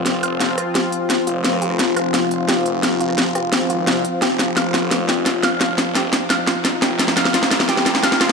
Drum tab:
HH |x-x-x-x-x-x-x-x-|x-x-x-x-x-x-x-x-|x-x-x-x-x-x-x-x-|x-x-x-x-x-x-x-x-|
SD |o---o-r-o---o---|or-ro-r-o---o---|o--ro-r-o---o---|o-o-o-o-o-o-o-o-|

HH |x-x-x-x-x-x-x-x-|x-x-x-x-x-x-x-x-|
SD |o-o-o-o-o-o-o-o-|ooooooooooooooo-|